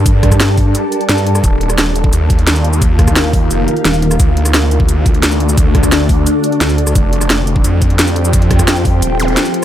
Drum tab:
HH |x-xxx-o-x-xxxxx-|x-xxx-x-x-xxxxx-|x-xxx-o-x-xxxxx-|x-xxx-x-x-xxxxx-|
SH |x--xx-x-x-x-xx-x|x--xx-x-x-x-xx-x|x--xx-x-x-x-xx-x|x--xx-x-x-x-xx-x|
SD |--rro-------o--r|---ro-------o---|--rro-------o--r|---ro-------o---|
BD |o-oo--o---------|o------o--o-----|o-oo--o---------|o------o--o-----|

HH |x-xxx-o-x-xxxxx-|x-xxx-x-x-xxxxx-|xxxxx-o-x-xxxxx-|
SH |x--xx-x-x-x-xx-x|x--xx-x-x-x-xx-x|x--xxxx-x-x-xx--|
SD |--rro-------o--r|---ro-------o---|--rro-------o---|
BD |o-oo--o---------|o------o--o-----|o-oo--o---------|